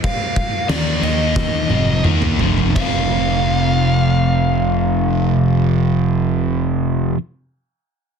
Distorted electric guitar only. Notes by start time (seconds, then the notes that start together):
0.69 D#3 A#3 D#4
1.02 D#3 A#3 D#4
1.70 F2 C3 F3
2.05 D#3 A#3 D#4
2.40 F2 C3 F3
2.75 F2 C3 F3